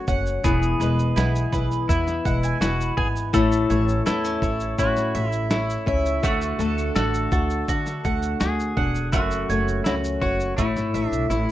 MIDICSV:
0, 0, Header, 1, 6, 480
1, 0, Start_track
1, 0, Key_signature, 3, "major"
1, 0, Tempo, 724638
1, 293, Time_signature, 4, 2, 24, 8
1, 7628, End_track
2, 0, Start_track
2, 0, Title_t, "Mandolin"
2, 0, Program_c, 0, 25
2, 0, Note_on_c, 0, 57, 100
2, 0, Note_on_c, 0, 66, 75
2, 0, Note_on_c, 0, 73, 63
2, 53, Note_on_c, 0, 78, 77
2, 290, Note_off_c, 0, 57, 0
2, 292, Note_on_c, 0, 59, 96
2, 341, Note_off_c, 0, 78, 0
2, 342, Note_off_c, 0, 73, 0
2, 343, Note_off_c, 0, 66, 0
2, 534, Note_on_c, 0, 71, 61
2, 768, Note_on_c, 0, 64, 68
2, 1001, Note_off_c, 0, 71, 0
2, 1009, Note_on_c, 0, 71, 58
2, 1252, Note_off_c, 0, 64, 0
2, 1255, Note_on_c, 0, 64, 65
2, 1492, Note_on_c, 0, 78, 68
2, 1612, Note_off_c, 0, 78, 0
2, 1612, Note_on_c, 0, 80, 49
2, 1725, Note_off_c, 0, 71, 0
2, 1733, Note_on_c, 0, 71, 63
2, 1963, Note_off_c, 0, 80, 0
2, 1971, Note_on_c, 0, 80, 75
2, 2208, Note_off_c, 0, 59, 0
2, 2210, Note_on_c, 0, 57, 101
2, 2259, Note_off_c, 0, 80, 0
2, 2260, Note_off_c, 0, 71, 0
2, 2450, Note_on_c, 0, 73, 70
2, 2685, Note_off_c, 0, 64, 0
2, 2688, Note_on_c, 0, 64, 65
2, 2925, Note_off_c, 0, 73, 0
2, 2933, Note_on_c, 0, 73, 60
2, 3164, Note_off_c, 0, 64, 0
2, 3172, Note_on_c, 0, 64, 75
2, 3409, Note_on_c, 0, 76, 84
2, 3639, Note_off_c, 0, 73, 0
2, 3647, Note_on_c, 0, 73, 64
2, 3885, Note_off_c, 0, 76, 0
2, 3893, Note_on_c, 0, 76, 78
2, 4134, Note_off_c, 0, 57, 0
2, 4137, Note_on_c, 0, 57, 106
2, 4176, Note_off_c, 0, 73, 0
2, 4179, Note_off_c, 0, 64, 0
2, 4180, Note_off_c, 0, 76, 0
2, 4374, Note_on_c, 0, 69, 66
2, 4613, Note_on_c, 0, 66, 70
2, 4849, Note_off_c, 0, 66, 0
2, 4852, Note_off_c, 0, 69, 0
2, 4852, Note_on_c, 0, 69, 60
2, 5091, Note_off_c, 0, 69, 0
2, 5094, Note_on_c, 0, 66, 74
2, 5331, Note_on_c, 0, 78, 71
2, 5800, Note_off_c, 0, 78, 0
2, 5808, Note_on_c, 0, 78, 80
2, 6046, Note_off_c, 0, 57, 0
2, 6049, Note_on_c, 0, 57, 99
2, 6097, Note_off_c, 0, 78, 0
2, 6099, Note_off_c, 0, 66, 0
2, 6290, Note_on_c, 0, 73, 67
2, 6531, Note_off_c, 0, 73, 0
2, 6534, Note_on_c, 0, 66, 66
2, 6768, Note_on_c, 0, 73, 69
2, 7002, Note_off_c, 0, 57, 0
2, 7010, Note_on_c, 0, 57, 86
2, 7057, Note_off_c, 0, 73, 0
2, 7060, Note_off_c, 0, 66, 0
2, 7248, Note_on_c, 0, 76, 72
2, 7487, Note_on_c, 0, 73, 59
2, 7628, Note_off_c, 0, 57, 0
2, 7628, Note_off_c, 0, 73, 0
2, 7628, Note_off_c, 0, 76, 0
2, 7628, End_track
3, 0, Start_track
3, 0, Title_t, "Pedal steel guitar"
3, 0, Program_c, 1, 26
3, 294, Note_on_c, 1, 68, 100
3, 1252, Note_on_c, 1, 64, 106
3, 1282, Note_off_c, 1, 68, 0
3, 1705, Note_off_c, 1, 64, 0
3, 1729, Note_on_c, 1, 66, 92
3, 1954, Note_off_c, 1, 66, 0
3, 1968, Note_on_c, 1, 68, 122
3, 2033, Note_off_c, 1, 68, 0
3, 2212, Note_on_c, 1, 69, 105
3, 2665, Note_off_c, 1, 69, 0
3, 2691, Note_on_c, 1, 69, 107
3, 3174, Note_on_c, 1, 66, 110
3, 3185, Note_off_c, 1, 69, 0
3, 3512, Note_off_c, 1, 66, 0
3, 3512, Note_on_c, 1, 64, 110
3, 3626, Note_off_c, 1, 64, 0
3, 3649, Note_on_c, 1, 64, 94
3, 4129, Note_off_c, 1, 64, 0
3, 4131, Note_on_c, 1, 66, 96
3, 4584, Note_off_c, 1, 66, 0
3, 4608, Note_on_c, 1, 69, 116
3, 5564, Note_off_c, 1, 69, 0
3, 5567, Note_on_c, 1, 68, 97
3, 6022, Note_off_c, 1, 68, 0
3, 6044, Note_on_c, 1, 66, 95
3, 6500, Note_off_c, 1, 66, 0
3, 6520, Note_on_c, 1, 64, 94
3, 6586, Note_off_c, 1, 64, 0
3, 6766, Note_on_c, 1, 66, 96
3, 6991, Note_off_c, 1, 66, 0
3, 6999, Note_on_c, 1, 64, 81
3, 7337, Note_off_c, 1, 64, 0
3, 7337, Note_on_c, 1, 62, 81
3, 7458, Note_off_c, 1, 62, 0
3, 7485, Note_on_c, 1, 64, 77
3, 7628, Note_off_c, 1, 64, 0
3, 7628, End_track
4, 0, Start_track
4, 0, Title_t, "Nylon-string guitar"
4, 0, Program_c, 2, 24
4, 0, Note_on_c, 2, 42, 87
4, 0, Note_on_c, 2, 57, 63
4, 0, Note_on_c, 2, 66, 75
4, 51, Note_on_c, 2, 61, 67
4, 292, Note_off_c, 2, 42, 0
4, 295, Note_off_c, 2, 66, 0
4, 295, Note_on_c, 2, 40, 86
4, 299, Note_on_c, 2, 64, 70
4, 340, Note_off_c, 2, 57, 0
4, 340, Note_off_c, 2, 61, 0
4, 534, Note_on_c, 2, 56, 75
4, 775, Note_on_c, 2, 59, 62
4, 1013, Note_off_c, 2, 64, 0
4, 1016, Note_on_c, 2, 64, 80
4, 1245, Note_off_c, 2, 59, 0
4, 1253, Note_on_c, 2, 59, 65
4, 1483, Note_off_c, 2, 56, 0
4, 1491, Note_on_c, 2, 56, 69
4, 1725, Note_off_c, 2, 64, 0
4, 1728, Note_on_c, 2, 64, 79
4, 1960, Note_off_c, 2, 59, 0
4, 1968, Note_on_c, 2, 59, 65
4, 2206, Note_on_c, 2, 45, 93
4, 2207, Note_off_c, 2, 64, 0
4, 2210, Note_on_c, 2, 64, 83
4, 2213, Note_off_c, 2, 40, 0
4, 2258, Note_off_c, 2, 59, 0
4, 2259, Note_off_c, 2, 56, 0
4, 2450, Note_on_c, 2, 57, 70
4, 2690, Note_on_c, 2, 59, 65
4, 2812, Note_off_c, 2, 59, 0
4, 2812, Note_on_c, 2, 61, 62
4, 2922, Note_off_c, 2, 64, 0
4, 2930, Note_on_c, 2, 64, 73
4, 3161, Note_off_c, 2, 61, 0
4, 3169, Note_on_c, 2, 61, 72
4, 3411, Note_off_c, 2, 57, 0
4, 3414, Note_on_c, 2, 57, 57
4, 3639, Note_off_c, 2, 64, 0
4, 3647, Note_on_c, 2, 64, 75
4, 3875, Note_off_c, 2, 61, 0
4, 3883, Note_on_c, 2, 61, 72
4, 4125, Note_off_c, 2, 64, 0
4, 4125, Note_on_c, 2, 50, 91
4, 4128, Note_off_c, 2, 45, 0
4, 4128, Note_on_c, 2, 66, 84
4, 4175, Note_off_c, 2, 61, 0
4, 4360, Note_off_c, 2, 57, 0
4, 4363, Note_on_c, 2, 57, 76
4, 4608, Note_on_c, 2, 62, 67
4, 4847, Note_off_c, 2, 66, 0
4, 4849, Note_on_c, 2, 66, 66
4, 5081, Note_off_c, 2, 62, 0
4, 5089, Note_on_c, 2, 62, 72
4, 5326, Note_off_c, 2, 57, 0
4, 5329, Note_on_c, 2, 57, 64
4, 5565, Note_off_c, 2, 66, 0
4, 5568, Note_on_c, 2, 66, 78
4, 5802, Note_off_c, 2, 62, 0
4, 5810, Note_on_c, 2, 62, 70
4, 6046, Note_off_c, 2, 50, 0
4, 6048, Note_off_c, 2, 66, 0
4, 6052, Note_on_c, 2, 42, 91
4, 6055, Note_on_c, 2, 66, 74
4, 6097, Note_off_c, 2, 62, 0
4, 6294, Note_off_c, 2, 57, 0
4, 6297, Note_on_c, 2, 57, 78
4, 6535, Note_on_c, 2, 61, 71
4, 6763, Note_off_c, 2, 66, 0
4, 6771, Note_on_c, 2, 66, 81
4, 7010, Note_off_c, 2, 42, 0
4, 7012, Note_on_c, 2, 45, 82
4, 7058, Note_off_c, 2, 66, 0
4, 7060, Note_off_c, 2, 61, 0
4, 7061, Note_off_c, 2, 57, 0
4, 7251, Note_on_c, 2, 57, 60
4, 7491, Note_on_c, 2, 64, 82
4, 7628, Note_off_c, 2, 45, 0
4, 7628, Note_off_c, 2, 57, 0
4, 7628, Note_off_c, 2, 64, 0
4, 7628, End_track
5, 0, Start_track
5, 0, Title_t, "Upright bass"
5, 0, Program_c, 3, 32
5, 52, Note_on_c, 3, 30, 98
5, 249, Note_off_c, 3, 30, 0
5, 295, Note_on_c, 3, 28, 113
5, 491, Note_off_c, 3, 28, 0
5, 529, Note_on_c, 3, 28, 114
5, 727, Note_off_c, 3, 28, 0
5, 770, Note_on_c, 3, 35, 97
5, 968, Note_off_c, 3, 35, 0
5, 1011, Note_on_c, 3, 35, 87
5, 1208, Note_off_c, 3, 35, 0
5, 1253, Note_on_c, 3, 40, 102
5, 1449, Note_off_c, 3, 40, 0
5, 1494, Note_on_c, 3, 28, 98
5, 1690, Note_off_c, 3, 28, 0
5, 1726, Note_on_c, 3, 28, 98
5, 1925, Note_off_c, 3, 28, 0
5, 1970, Note_on_c, 3, 32, 93
5, 2167, Note_off_c, 3, 32, 0
5, 2211, Note_on_c, 3, 33, 116
5, 2408, Note_off_c, 3, 33, 0
5, 2452, Note_on_c, 3, 33, 125
5, 2649, Note_off_c, 3, 33, 0
5, 2691, Note_on_c, 3, 40, 91
5, 2888, Note_off_c, 3, 40, 0
5, 2929, Note_on_c, 3, 33, 88
5, 3126, Note_off_c, 3, 33, 0
5, 3172, Note_on_c, 3, 45, 101
5, 3368, Note_off_c, 3, 45, 0
5, 3412, Note_on_c, 3, 33, 109
5, 3805, Note_off_c, 3, 33, 0
5, 3890, Note_on_c, 3, 37, 95
5, 4087, Note_off_c, 3, 37, 0
5, 4131, Note_on_c, 3, 38, 115
5, 4327, Note_off_c, 3, 38, 0
5, 4366, Note_on_c, 3, 38, 119
5, 4564, Note_off_c, 3, 38, 0
5, 4610, Note_on_c, 3, 33, 98
5, 4807, Note_off_c, 3, 33, 0
5, 4848, Note_on_c, 3, 38, 94
5, 5045, Note_off_c, 3, 38, 0
5, 5090, Note_on_c, 3, 50, 92
5, 5287, Note_off_c, 3, 50, 0
5, 5330, Note_on_c, 3, 38, 95
5, 5526, Note_off_c, 3, 38, 0
5, 5571, Note_on_c, 3, 38, 102
5, 5767, Note_off_c, 3, 38, 0
5, 5810, Note_on_c, 3, 28, 99
5, 6048, Note_off_c, 3, 28, 0
5, 6048, Note_on_c, 3, 30, 126
5, 6245, Note_off_c, 3, 30, 0
5, 6289, Note_on_c, 3, 30, 110
5, 6486, Note_off_c, 3, 30, 0
5, 6530, Note_on_c, 3, 37, 87
5, 6726, Note_off_c, 3, 37, 0
5, 6769, Note_on_c, 3, 30, 89
5, 6966, Note_off_c, 3, 30, 0
5, 7007, Note_on_c, 3, 33, 107
5, 7106, Note_off_c, 3, 33, 0
5, 7130, Note_on_c, 3, 32, 85
5, 7228, Note_off_c, 3, 32, 0
5, 7248, Note_on_c, 3, 33, 95
5, 7347, Note_off_c, 3, 33, 0
5, 7364, Note_on_c, 3, 35, 92
5, 7465, Note_off_c, 3, 35, 0
5, 7485, Note_on_c, 3, 33, 102
5, 7585, Note_off_c, 3, 33, 0
5, 7628, End_track
6, 0, Start_track
6, 0, Title_t, "Drums"
6, 51, Note_on_c, 9, 82, 57
6, 52, Note_on_c, 9, 36, 108
6, 117, Note_off_c, 9, 82, 0
6, 118, Note_off_c, 9, 36, 0
6, 176, Note_on_c, 9, 82, 53
6, 242, Note_off_c, 9, 82, 0
6, 293, Note_on_c, 9, 36, 127
6, 294, Note_on_c, 9, 82, 93
6, 360, Note_off_c, 9, 36, 0
6, 360, Note_off_c, 9, 82, 0
6, 414, Note_on_c, 9, 82, 61
6, 480, Note_off_c, 9, 82, 0
6, 536, Note_on_c, 9, 82, 61
6, 603, Note_off_c, 9, 82, 0
6, 656, Note_on_c, 9, 82, 55
6, 722, Note_off_c, 9, 82, 0
6, 775, Note_on_c, 9, 82, 81
6, 778, Note_on_c, 9, 38, 113
6, 841, Note_off_c, 9, 82, 0
6, 844, Note_off_c, 9, 38, 0
6, 898, Note_on_c, 9, 82, 63
6, 964, Note_off_c, 9, 82, 0
6, 1012, Note_on_c, 9, 36, 97
6, 1016, Note_on_c, 9, 82, 49
6, 1078, Note_off_c, 9, 36, 0
6, 1082, Note_off_c, 9, 82, 0
6, 1137, Note_on_c, 9, 82, 47
6, 1203, Note_off_c, 9, 82, 0
6, 1253, Note_on_c, 9, 36, 92
6, 1257, Note_on_c, 9, 82, 84
6, 1320, Note_off_c, 9, 36, 0
6, 1323, Note_off_c, 9, 82, 0
6, 1374, Note_on_c, 9, 38, 40
6, 1374, Note_on_c, 9, 82, 54
6, 1440, Note_off_c, 9, 82, 0
6, 1441, Note_off_c, 9, 38, 0
6, 1494, Note_on_c, 9, 36, 102
6, 1496, Note_on_c, 9, 82, 46
6, 1560, Note_off_c, 9, 36, 0
6, 1562, Note_off_c, 9, 82, 0
6, 1614, Note_on_c, 9, 82, 63
6, 1680, Note_off_c, 9, 82, 0
6, 1734, Note_on_c, 9, 82, 90
6, 1735, Note_on_c, 9, 38, 127
6, 1800, Note_off_c, 9, 82, 0
6, 1801, Note_off_c, 9, 38, 0
6, 1860, Note_on_c, 9, 82, 56
6, 1926, Note_off_c, 9, 82, 0
6, 1971, Note_on_c, 9, 36, 101
6, 2037, Note_off_c, 9, 36, 0
6, 2096, Note_on_c, 9, 82, 62
6, 2162, Note_off_c, 9, 82, 0
6, 2211, Note_on_c, 9, 36, 127
6, 2211, Note_on_c, 9, 82, 90
6, 2277, Note_off_c, 9, 36, 0
6, 2277, Note_off_c, 9, 82, 0
6, 2332, Note_on_c, 9, 82, 62
6, 2398, Note_off_c, 9, 82, 0
6, 2455, Note_on_c, 9, 82, 66
6, 2522, Note_off_c, 9, 82, 0
6, 2575, Note_on_c, 9, 82, 54
6, 2641, Note_off_c, 9, 82, 0
6, 2692, Note_on_c, 9, 82, 82
6, 2695, Note_on_c, 9, 38, 123
6, 2758, Note_off_c, 9, 82, 0
6, 2761, Note_off_c, 9, 38, 0
6, 2813, Note_on_c, 9, 82, 65
6, 2880, Note_off_c, 9, 82, 0
6, 2928, Note_on_c, 9, 36, 96
6, 2932, Note_on_c, 9, 82, 51
6, 2995, Note_off_c, 9, 36, 0
6, 2999, Note_off_c, 9, 82, 0
6, 3049, Note_on_c, 9, 82, 52
6, 3115, Note_off_c, 9, 82, 0
6, 3170, Note_on_c, 9, 36, 98
6, 3170, Note_on_c, 9, 82, 80
6, 3236, Note_off_c, 9, 36, 0
6, 3236, Note_off_c, 9, 82, 0
6, 3290, Note_on_c, 9, 38, 37
6, 3290, Note_on_c, 9, 82, 49
6, 3356, Note_off_c, 9, 82, 0
6, 3357, Note_off_c, 9, 38, 0
6, 3413, Note_on_c, 9, 82, 52
6, 3480, Note_off_c, 9, 82, 0
6, 3527, Note_on_c, 9, 82, 57
6, 3593, Note_off_c, 9, 82, 0
6, 3647, Note_on_c, 9, 82, 88
6, 3648, Note_on_c, 9, 38, 127
6, 3713, Note_off_c, 9, 82, 0
6, 3715, Note_off_c, 9, 38, 0
6, 3776, Note_on_c, 9, 82, 55
6, 3842, Note_off_c, 9, 82, 0
6, 3889, Note_on_c, 9, 36, 101
6, 3956, Note_off_c, 9, 36, 0
6, 4013, Note_on_c, 9, 82, 59
6, 4079, Note_off_c, 9, 82, 0
6, 4130, Note_on_c, 9, 36, 127
6, 4130, Note_on_c, 9, 82, 81
6, 4196, Note_off_c, 9, 36, 0
6, 4197, Note_off_c, 9, 82, 0
6, 4250, Note_on_c, 9, 82, 64
6, 4316, Note_off_c, 9, 82, 0
6, 4371, Note_on_c, 9, 82, 61
6, 4437, Note_off_c, 9, 82, 0
6, 4492, Note_on_c, 9, 82, 50
6, 4559, Note_off_c, 9, 82, 0
6, 4608, Note_on_c, 9, 82, 79
6, 4611, Note_on_c, 9, 38, 117
6, 4674, Note_off_c, 9, 82, 0
6, 4678, Note_off_c, 9, 38, 0
6, 4731, Note_on_c, 9, 82, 62
6, 4797, Note_off_c, 9, 82, 0
6, 4847, Note_on_c, 9, 82, 52
6, 4848, Note_on_c, 9, 36, 108
6, 4913, Note_off_c, 9, 82, 0
6, 4915, Note_off_c, 9, 36, 0
6, 4970, Note_on_c, 9, 82, 50
6, 5036, Note_off_c, 9, 82, 0
6, 5090, Note_on_c, 9, 36, 100
6, 5090, Note_on_c, 9, 82, 86
6, 5156, Note_off_c, 9, 82, 0
6, 5157, Note_off_c, 9, 36, 0
6, 5209, Note_on_c, 9, 38, 39
6, 5209, Note_on_c, 9, 82, 51
6, 5275, Note_off_c, 9, 82, 0
6, 5276, Note_off_c, 9, 38, 0
6, 5330, Note_on_c, 9, 82, 51
6, 5331, Note_on_c, 9, 36, 103
6, 5396, Note_off_c, 9, 82, 0
6, 5398, Note_off_c, 9, 36, 0
6, 5449, Note_on_c, 9, 82, 69
6, 5516, Note_off_c, 9, 82, 0
6, 5567, Note_on_c, 9, 82, 89
6, 5569, Note_on_c, 9, 38, 127
6, 5634, Note_off_c, 9, 82, 0
6, 5635, Note_off_c, 9, 38, 0
6, 5696, Note_on_c, 9, 82, 51
6, 5762, Note_off_c, 9, 82, 0
6, 5810, Note_on_c, 9, 36, 107
6, 5876, Note_off_c, 9, 36, 0
6, 5930, Note_on_c, 9, 82, 59
6, 5996, Note_off_c, 9, 82, 0
6, 6046, Note_on_c, 9, 82, 95
6, 6049, Note_on_c, 9, 36, 127
6, 6112, Note_off_c, 9, 82, 0
6, 6115, Note_off_c, 9, 36, 0
6, 6168, Note_on_c, 9, 82, 59
6, 6234, Note_off_c, 9, 82, 0
6, 6294, Note_on_c, 9, 82, 60
6, 6360, Note_off_c, 9, 82, 0
6, 6412, Note_on_c, 9, 82, 51
6, 6478, Note_off_c, 9, 82, 0
6, 6529, Note_on_c, 9, 82, 81
6, 6533, Note_on_c, 9, 38, 118
6, 6596, Note_off_c, 9, 82, 0
6, 6599, Note_off_c, 9, 38, 0
6, 6653, Note_on_c, 9, 82, 67
6, 6719, Note_off_c, 9, 82, 0
6, 6767, Note_on_c, 9, 36, 96
6, 6834, Note_off_c, 9, 36, 0
6, 6890, Note_on_c, 9, 82, 49
6, 6957, Note_off_c, 9, 82, 0
6, 7008, Note_on_c, 9, 82, 83
6, 7009, Note_on_c, 9, 36, 93
6, 7074, Note_off_c, 9, 82, 0
6, 7075, Note_off_c, 9, 36, 0
6, 7132, Note_on_c, 9, 82, 46
6, 7133, Note_on_c, 9, 38, 41
6, 7198, Note_off_c, 9, 82, 0
6, 7199, Note_off_c, 9, 38, 0
6, 7252, Note_on_c, 9, 82, 51
6, 7318, Note_off_c, 9, 82, 0
6, 7370, Note_on_c, 9, 82, 66
6, 7436, Note_off_c, 9, 82, 0
6, 7489, Note_on_c, 9, 82, 87
6, 7555, Note_off_c, 9, 82, 0
6, 7628, End_track
0, 0, End_of_file